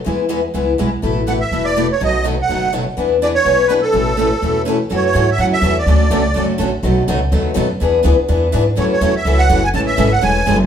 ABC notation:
X:1
M:4/4
L:1/8
Q:"Swing" 1/4=248
K:A
V:1 name="Accordion"
z8 | z2 f e2 d2 c | ^d2 z f3 z2 | z2 d c3 B A- |
A6 z2 | c c2 e f e2 d- | d4- d z3 | z8 |
z8 | c c2 e2 f2 g | a e2 f g3 z |]
V:2 name="Steel-string acoustic guitar"
[E,G,B,EG] z [E,G,B,EG] z [E,G,B,EG] z [E,G,B,EG] z | [A,B,EB] z [A,B,EB] z [A,B,EB] z [A,B,EB] z | [B,,^D,F,B,^DA] z [B,,D,F,B,DA] z [B,,D,F,B,DA] z [B,,D,F,B,DA] z | [E,B,DGB] z [E,B,DGB] z [E,B,DGB] z [E,B,DGB] z |
[A,CEB] z [A,CEB] z [A,CEB] z [A,CEB] z | [F,CEA] z [F,CEA] z [F,CEA] z [F,CEA] z | [D,A,CFA] z [D,A,CFA] z [D,A,CFA] z [D,A,CFA] z | [B,,^D,F,B,^DA] z [B,,D,F,B,DA] z [B,,D,F,B,DA] z [B,,D,F,B,DA] z |
[E,B,DGB] z [E,B,DGB] z [E,B,DGB] z [E,B,DGB] z | [F,CEA] z [F,CEA] z [F,CEA] z [F,CEA] z | [E,G,CEA] z [E,G,CEA] z [E,G,CEA] z [E,G,CEA] z |]
V:3 name="Steel-string acoustic guitar"
[E,G,B,EG] z [E,G,B,EG] z [E,G,B,EG] z [E,G,B,EG] z | [B,,E,A,EA] z [B,,E,A,EA] z [B,,E,A,EA] z [B,,E,A,EA] z | [B,,F,A,^DF] z [B,,F,A,DF] z [B,,F,A,DF] z [B,,F,A,DF] z | [E,B,DG] z [E,B,DG] z [E,B,DG] z [E,B,DG] z |
[B,,E,A,CA] z [B,,E,A,CA] z [B,,E,A,CA] z [B,,E,A,CA] z | [C,E,A,CF] z [C,E,A,CF] z [C,E,A,CF] z [C,E,A,CF] z | [D,F,A,CF] z [D,F,A,CF] z [D,F,A,CF] z [D,F,A,CF] z | [B,,F,A,^DF] z [B,,F,A,DF] z [B,,F,A,DF] z [B,,F,A,DF] z |
[E,B,DG] z [E,B,DG] z [E,B,DG] z [E,B,DG] z | [C,E,A,CF] z [C,E,A,CF] z [C,E,A,CF] z [C,E,A,CF] z | [C,E,A,CG] z [C,E,A,CG] z [C,E,A,CG] z [C,E,A,CG] z |]
V:4 name="Upright bass" clef=bass
E,,4 C,,2 B,,,2 | A,,,4 E,,,4 | B,,,4 F,,,4 | E,,4 B,,,4 |
A,,,4 E,,4 | F,,2 G,,2 F,,2 E,,2 | D,,2 C,,2 F,,,2 A,,,2 | B,,,2 C,,2 ^D,,2 F,,2 |
E,,2 D,, z E,,2 G,,2 | F,,2 E,, z C,,2 F,,,2 | A,,,2 G,,,2 E,,,2 F,,,2 |]